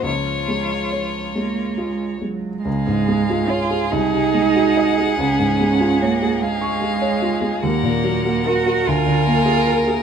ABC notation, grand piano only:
X:1
M:6/8
L:1/16
Q:3/8=48
K:Db
V:1 name="Grand piano"
D,,2 A,2 d2 A,2 F2 A,2 | D,, A,, A, F d A C,, C, A, G e A | D,, A,, A, F d A f d' A d F A, | E,, B,, G, G B G =D,, =D, B, A B A |]